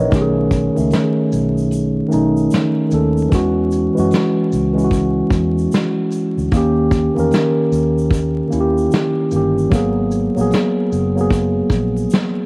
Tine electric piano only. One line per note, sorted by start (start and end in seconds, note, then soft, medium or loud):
0.00 0.13 C#4 medium
0.00 0.14 D#4 medium
0.00 0.13 E4 medium
0.00 0.36 A#4 medium
0.00 0.13 B4 medium
0.00 0.36 C#5 medium
0.00 0.14 D#5 medium
0.00 0.13 E5 medium
0.00 0.14 F#5 medium
0.09 0.72 D#3 loud
0.09 0.73 A3 medium
0.09 0.73 C#4 medium
0.15 0.21 G4 medium
0.21 0.77 G#4 loud
0.75 2.05 D#3 medium
0.75 2.06 A3 medium
0.75 2.07 C#4 medium
0.81 2.08 D#4 medium
2.08 2.87 D#3 medium
2.08 2.88 A3 medium
2.08 2.88 C#4 medium
2.13 2.89 D#4 loud
2.89 3.29 D#3 medium
2.89 3.30 A3 medium
2.89 3.31 C#4 medium
2.94 3.31 A4 medium
3.29 3.91 E3 loud
3.29 3.92 G#3 loud
3.29 3.93 C#4 medium
3.35 3.94 F#4 loud
3.94 4.70 E3 medium
3.94 4.71 G#3 medium
3.94 4.72 C#4 medium
4.00 4.73 F#4 medium
4.73 6.24 E3 medium
4.73 6.25 G#3 medium
4.73 6.26 C#4 medium
4.78 4.82 E4 medium
4.85 6.30 F#4 medium
6.52 7.13 D#3 medium
6.52 7.14 A#3 loud
6.52 7.15 C#4 loud
6.57 7.15 G4 loud
7.14 8.45 D#3 medium
7.14 8.46 A#3 medium
7.14 8.47 C#4 medium
7.20 8.48 A#4 medium
8.48 9.27 D#3 medium
8.48 9.28 A#3 medium
8.48 9.29 C#4 medium
8.54 8.61 E4 medium
8.60 9.33 G4 medium
9.31 9.70 D#3 medium
9.31 9.71 A#3 medium
9.31 9.71 C#4 medium
9.36 9.72 G4 medium
9.70 10.32 F#3 loud
9.70 10.33 A#3 medium
9.70 10.34 B3 medium
9.76 10.35 G#4 loud
10.36 11.11 F#3 medium
10.36 11.12 A#3 medium
10.36 11.13 B3 medium
10.41 11.14 G#4 medium
11.16 12.46 F#3 medium
11.16 12.46 A#3 medium
11.16 12.46 B3 medium
11.21 12.46 G#4 medium